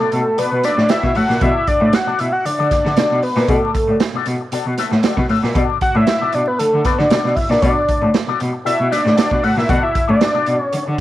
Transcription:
Already playing: analog synth lead A4
0.00 cello B2, clean electric guitar F#4 A4 D5
0.11 cello B2, analog synth lead A4, muted clean electric guitar stroke, closed hi-hat
0.26 muted clean electric guitar stroke
0.37 cello B2, clean electric guitar F#4 A4 D5, analog synth lead B4, closed hi-hat
0.51 cello B2, muted clean electric guitar stroke
0.63 clean electric guitar F#4 A4 E5, analog synth lead D5, snare, closed hi-hat
0.77 cello A2, muted clean electric guitar stroke, snare
0.89 clean electric guitar F#4 A4 D5, analog synth lead E5, snare, closed hi-hat
1.03 cello B2, muted clean electric guitar stroke, kick, snare
1.15 cello A2, clean electric guitar F#4 A4 E5, analog synth lead F#5, open hi-hat
1.29 cello A#2, muted clean electric guitar stroke, snare
1.41 cello B2, clean electric guitar F#4 A4 D5, analog synth lead E5, kick, closed hi-hat
1.67 analog synth lead D5, muted clean electric guitar stroke, kick, closed hi-hat
1.81 cello A2, clean electric guitar F#4 A4 D5
1.93 analog synth lead F#5, snare, closed hi-hat
2.07 cello B2, clean electric guitar F#4 A4 D5
2.19 cello B2, analog synth lead E5, muted clean electric guitar stroke, closed hi-hat
2.33 analog synth lead F#5, muted clean electric guitar stroke
2.45 cello D3, analog synth lead D5, muted clean electric guitar stroke, closed hi-hat
2.59 cello D3, clean electric guitar F#4 A4 D5
2.71 analog synth lead D5, muted clean electric guitar stroke, kick, snare, closed hi-hat
2.85 cello D3, muted clean electric guitar stroke, snare
2.97 cello B2, clean electric guitar F#4 A4 D5, snare, closed hi-hat
3.11 cello B2
3.23 analog synth lead B4, muted clean electric guitar stroke, open hi-hat
3.36 cello A#2, clean electric guitar F#4 A4 D5, snare
3.48 cello B2, clean electric guitar F#4 A4 D5, analog synth lead A4, kick, closed hi-hat
3.75 muted clean electric guitar stroke, kick, closed hi-hat
3.88 cello A2, clean electric guitar F#4 A4 D5
4.00 snare, closed hi-hat
4.14 cello B2, clean electric guitar F#4 A4 D5
4.26 cello B2, muted clean electric guitar stroke, closed hi-hat
4.41 muted clean electric guitar stroke
4.52 cello B2, clean electric guitar F#4 A4 D5, closed hi-hat
4.65 cello B2, muted clean electric guitar stroke
4.78 clean electric guitar F#4 A4 E5, snare, closed hi-hat
4.91 cello A2, muted clean electric guitar stroke, snare
5.03 clean electric guitar F#4 A4 D5, snare, closed hi-hat
5.17 cello B2, muted clean electric guitar stroke, kick, snare
5.29 cello A2, clean electric guitar F#4 A4 E5, open hi-hat
5.43 cello A#2, muted clean electric guitar stroke, snare
5.55 cello B2, clean electric guitar F#4 A4 D5, kick, closed hi-hat
5.81 analog synth lead F#5, muted clean electric guitar stroke, kick, closed hi-hat
5.95 cello A2, clean electric guitar F#4 A4 D5, analog synth lead E5
6.07 muted clean electric guitar stroke, snare, closed hi-hat
6.21 cello B2, clean electric guitar F#4 A4 D5
6.32 cello B2, analog synth lead D5, muted clean electric guitar stroke, closed hi-hat
6.47 analog synth lead B4, muted clean electric guitar stroke
6.59 cello D3, analog synth lead A4, closed hi-hat
6.73 cello D3, muted clean electric guitar stroke
6.85 clean electric guitar F#4 A4 D5, analog synth lead B4, kick, snare, closed hi-hat
6.99 cello D3, analog synth lead D5, muted clean electric guitar stroke, snare
7.10 cello B2, clean electric guitar F#4 A4 D5, snare, closed hi-hat
7.24 cello B2, snare
7.36 analog synth lead E5, muted clean electric guitar stroke, kick, open hi-hat
7.50 cello A#2, clean electric guitar F#4 A4 D5, analog synth lead D5, snare
7.62 cello B2, clean electric guitar F#4 A4 D5, analog synth lead D5, kick, closed hi-hat
7.88 muted clean electric guitar stroke, kick, closed hi-hat
8.02 cello A2, clean electric guitar F#4 A4 D5
8.14 muted clean electric guitar stroke, snare, closed hi-hat
8.27 cello B2, clean electric guitar F#4 A4 D5
8.40 cello B2, muted clean electric guitar stroke, closed hi-hat
8.53 muted clean electric guitar stroke
8.65 cello B2, clean electric guitar F#4 A4 D5, analog synth lead E5, closed hi-hat
8.79 cello B2, muted clean electric guitar stroke
8.91 clean electric guitar F#4 A4 E5, analog synth lead D5, snare, closed hi-hat
9.05 cello A2, muted clean electric guitar stroke, snare
9.16 clean electric guitar F#4 A4 D5, snare, closed hi-hat
9.31 cello B2, muted clean electric guitar stroke, kick
9.43 cello A2, clean electric guitar F#4 A4 E5, analog synth lead F#5, open hi-hat
9.57 cello A#2, analog synth lead E5, muted clean electric guitar stroke, snare
9.69 cello B2, clean electric guitar F#4 A4 D5, analog synth lead F#5, kick, closed hi-hat
9.83 analog synth lead E5
9.94 muted clean electric guitar stroke, kick, closed hi-hat
10.07 cello A2, clean electric guitar F#4 A4 D5, analog synth lead D5
10.21 snare, closed hi-hat
10.34 cello B2, clean electric guitar F#4 A4 D5
10.46 cello B2, muted clean electric guitar stroke, closed hi-hat
10.60 analog synth lead C#5, muted clean electric guitar stroke
10.71 cello D3, muted clean electric guitar stroke, closed hi-hat
10.85 cello D3, muted clean electric guitar stroke

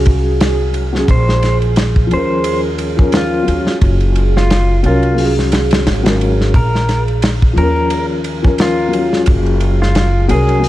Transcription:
Already playing: upright bass C2, felt piano F#3 C#4 G#4, ambient pad G#4
0.06 kick, ride
0.41 snare, ride
0.74 ride
0.93 felt piano F#3 C#4, snare
0.98 felt piano G#4
1.08 upright bass A#1, electric slide guitar C5, kick, ride
1.29 snare
1.43 snare, ride
1.62 ride
1.76 snare, ride
1.96 kick
2.07 felt piano F3
2.11 upright bass D#2, felt piano C#4, electric slide guitar C5, ride
2.17 felt piano A#4
2.44 ride
2.78 ride
2.97 felt piano F3 C#4, kick
3.02 felt piano A#4
3.12 snare, ride
3.17 electric slide guitar F4
3.43 felt piano F#3
3.48 upright bass D#2, felt piano C#4, ride
3.53 felt piano F4
3.67 snare
3.81 upright bass F#1, kick, ride
4.00 ride
4.16 ride
4.37 electric slide guitar F4, snare
4.50 snare, ride
4.83 upright bass C2, felt piano F#3 C#4, electric slide guitar F4, ride
4.88 felt piano A#4
5.03 ride
5.15 felt piano F#3, open hi-hat
5.19 felt piano C#4
5.24 felt piano G#4
5.39 snare
5.52 snare, ride
5.71 snare, ride
5.87 upright bass G#1, snare, ride
6.03 felt piano F#3 C#4, snare, ride
6.09 felt piano A#4
6.21 ride
6.41 snare
6.53 upright bass A#1, ambient pad G#4, electric slide guitar A#4, kick, ride
6.75 snare
6.89 snare, ride
7.08 ride
7.22 snare, ride
7.42 kick
7.53 upright bass D#2, felt piano F3
7.57 felt piano C#4, electric slide guitar A#4, ride
7.63 felt piano A#4
7.90 ride
8.24 ride
8.42 felt piano F3 C#4, kick
8.48 felt piano A#4
8.58 electric slide guitar F4, snare, ride
8.88 felt piano F#3
8.93 felt piano C#4, ride
8.99 felt piano F4
9.13 snare
9.26 upright bass F#1, kick, ride
9.46 ride
9.60 ride
9.82 electric slide guitar F4, snare
9.95 snare, ride
10.28 upright bass C2, felt piano F#3 C#4, electric slide guitar G#4, ride
10.33 felt piano A#4
10.49 ride
10.60 felt piano F#3, open hi-hat

